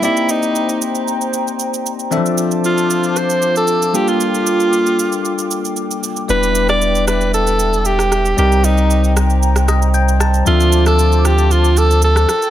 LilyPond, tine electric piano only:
\new Staff \with { instrumentName = "Tine electric piano" } { \time 4/4 \key d \dorian \tempo 4 = 115 << { r1 | r1 | r1 | r1 |
r2 r8 ees''8 g''8 a''8 | r1 | } \\ { <bes c' ees' g' d''>1 | <e f c' d' a' e''>2.~ <e f c' d' a' e''>8 <g bes d' f' a'>8~ | <g bes d' f' a'>2.~ <g bes d' f' a'>8 r8 | <g b d' e' b'>1 |
<g c' ees' bes' d''>1 | <f c' d' a' e''>2.~ <f c' d' a' e''>8 r8 | } >> }